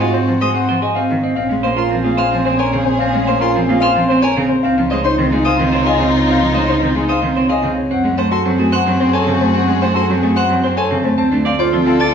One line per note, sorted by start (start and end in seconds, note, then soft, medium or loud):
0.00 1.22 G#2 medium
0.00 0.10 G#3 medium
0.00 1.19 C4 medium
0.00 0.18 F4 medium
0.00 1.19 F#4 medium
0.00 0.18 D#5 medium
0.00 0.10 G#5 medium
0.14 0.32 C4 medium
0.14 0.32 C5 medium
0.28 0.38 F3 medium
0.41 0.52 G#3 medium
0.41 0.59 G#4 medium
0.41 0.59 C5 medium
0.41 0.51 D#6 medium
0.54 0.73 C4 medium
0.54 0.72 F#5 medium
0.69 0.79 F3 medium
0.69 0.82 C5 medium
0.82 1.00 G#4 medium
0.82 1.00 D#5 medium
0.95 1.14 C4 medium
0.95 1.13 F5 medium
1.10 1.20 D#3 medium
1.23 1.35 C4 medium
1.23 1.41 D#5 medium
1.35 4.49 A#1 medium
1.35 1.49 C4 medium
1.35 4.46 C#4 medium
1.35 4.46 G#4 medium
1.35 1.54 F5 medium
1.50 1.61 G#3 medium
1.50 1.68 C#4 medium
1.63 1.75 A#3 medium
1.63 1.81 C5 medium
1.63 1.74 F5 medium
1.77 1.95 F4 medium
1.77 1.95 A#4 medium
1.77 1.88 C6 medium
1.90 2.02 F3 medium
1.90 2.09 C4 medium
2.04 2.16 A#3 medium
2.04 2.22 F4 medium
2.04 2.22 G#4 medium
2.17 2.36 C5 medium
2.17 2.36 F5 medium
2.17 2.28 F6 medium
2.31 2.43 F3 medium
2.31 2.50 C4 medium
2.45 2.56 C4 medium
2.45 2.59 C5 medium
2.45 2.63 C5 medium
2.59 2.77 A#4 medium
2.59 2.77 C#5 medium
2.59 2.69 G#5 medium
2.73 2.83 C#3 medium
2.73 2.91 C4 medium
2.86 3.04 C5 medium
2.99 3.13 C4 medium
2.99 3.18 F5 medium
3.14 3.25 G#3 medium
3.14 3.32 C#4 medium
3.27 3.38 A#3 medium
3.27 3.45 C5 medium
3.27 3.38 F5 medium
3.40 3.59 F4 medium
3.40 3.59 A#4 medium
3.40 3.51 C6 medium
3.55 3.65 F3 medium
3.55 3.73 C4 medium
3.67 3.79 A#3 medium
3.67 3.86 F4 medium
3.67 3.86 G#4 medium
3.80 4.00 C5 loud
3.80 3.99 F5 loud
3.80 3.92 F6 medium
3.96 4.06 F3 medium
3.96 4.14 C4 medium
4.08 4.20 C4 medium
4.08 4.27 C5 medium
4.08 4.23 C5 medium
4.21 4.41 A#4 loud
4.21 4.40 C#5 medium
4.21 4.33 G#5 loud
4.37 4.47 C#3 medium
4.37 4.55 C4 medium
4.49 4.68 C5 medium
4.63 7.76 C#2 medium
4.63 4.77 C4 loud
4.63 7.74 D#4 medium
4.63 7.74 F4 loud
4.63 4.81 F5 medium
4.78 4.88 F3 medium
4.78 4.95 C#4 medium
4.90 5.02 G#3 medium
4.90 5.09 C5 medium
4.90 5.09 C#5 medium
4.90 5.01 D#5 medium
5.04 5.18 D#4 loud
5.04 5.23 C5 medium
5.04 5.15 C6 loud
5.18 5.29 D#3 medium
5.18 5.32 C4 medium
5.32 5.42 G#3 medium
5.32 5.50 D#4 medium
5.32 5.50 G#4 medium
5.45 5.63 C5 medium
5.45 5.64 F5 medium
5.45 5.55 D#6 medium
5.59 5.70 D#3 medium
5.59 5.77 C4 medium
5.73 5.83 C4 medium
5.73 5.86 C5 medium
5.73 5.91 C#5 medium
5.86 6.04 G#4 medium
5.86 6.05 D#5 medium
5.86 5.96 F5 medium
6.00 6.10 C#3 medium
6.00 6.18 C4 medium
6.16 6.32 C#5 medium
6.27 6.41 C4 medium
6.27 6.46 F5 medium
6.40 6.51 F3 medium
6.54 6.65 G#3 medium
6.54 6.73 C5 medium
6.54 6.73 C#5 medium
6.54 6.65 D#5 medium
6.68 6.81 D#4 medium
6.68 6.86 C5 medium
6.68 6.78 C6 medium
6.81 6.92 D#3 medium
6.81 6.95 C4 medium
6.95 7.05 G#3 medium
6.95 7.13 D#4 medium
6.95 7.14 G#4 medium
7.09 7.27 C5 medium
7.09 7.27 F5 medium
7.09 7.19 D#6 medium
7.22 7.33 D#3 medium
7.22 7.41 C4 medium
7.36 7.46 C4 medium
7.36 7.49 C5 medium
7.36 7.54 C#5 medium
7.49 7.68 G#4 medium
7.49 7.68 D#5 medium
7.49 7.60 F5 medium
7.63 7.74 C#3 medium
7.63 7.82 C4 medium
7.78 7.95 C#5 medium
7.91 11.03 F#2 medium
7.91 8.04 C4 medium
7.91 11.01 F#4 medium
7.91 11.01 G#4 medium
7.91 8.09 F#5 medium
8.04 8.15 G#3 medium
8.04 8.23 C#4 medium
8.17 8.28 A3 medium
8.17 8.36 C5 medium
8.17 8.28 F#5 medium
8.31 8.50 F#4 medium
8.31 8.50 A4 medium
8.31 8.42 C6 medium
8.45 8.56 F#3 medium
8.45 8.63 C4 medium
8.59 8.69 A3 medium
8.59 8.77 F#4 medium
8.59 8.77 G#4 medium
8.72 8.91 C5 medium
8.72 8.91 F#5 medium
8.72 8.83 F#6 medium
8.86 8.97 F#3 medium
8.86 9.04 C4 medium
9.00 9.11 C4 medium
9.00 9.18 C5 medium
9.00 9.13 C5 medium
9.13 9.32 A4 medium
9.13 9.31 C#5 medium
9.13 9.24 G#5 medium
9.27 9.38 C#3 medium
9.27 9.45 C4 medium
9.41 9.51 A3 medium
9.41 9.59 C5 medium
9.54 9.67 C4 medium
9.54 9.72 F#5 medium
9.68 9.78 G#3 medium
9.68 9.86 C#4 medium
9.82 9.93 A3 medium
9.82 10.00 C5 medium
9.82 9.92 F#5 medium
9.94 10.13 F#4 medium
9.94 10.13 A4 medium
9.94 10.06 C6 medium
10.10 10.20 F#3 medium
10.10 10.27 C4 medium
10.23 10.33 A3 medium
10.23 10.41 F#4 medium
10.23 10.41 G#4 medium
10.36 10.54 C5 medium
10.36 10.54 F#5 loud
10.36 10.47 F#6 medium
10.50 10.60 F#3 medium
10.50 10.68 C4 medium
10.64 10.74 C4 medium
10.64 10.77 C5 medium
10.64 10.82 C5 medium
10.76 10.95 A4 medium
10.76 10.95 C#5 medium
10.76 10.88 G#5 medium
10.91 11.01 C#3 medium
10.91 11.09 C4 medium
11.04 11.14 A3 medium
11.04 11.22 C5 medium
11.18 12.14 D2 medium
11.18 11.31 C4 medium
11.18 12.14 F4 medium
11.18 12.14 A4 medium
11.18 11.36 A5 medium
11.31 11.42 A3 medium
11.31 11.50 D4 medium
11.45 11.56 C4 medium
11.45 11.63 D5 medium
11.45 11.56 F5 medium
11.59 11.77 F4 loud
11.59 11.77 C5 medium
11.59 11.69 D6 medium
11.73 11.83 F3 medium
11.73 11.91 C4 medium
11.86 11.97 C4 medium
11.86 12.04 F4 medium
11.86 12.05 A4 medium
12.00 12.14 D5 medium
12.00 12.14 A5 medium
12.00 12.10 A6 medium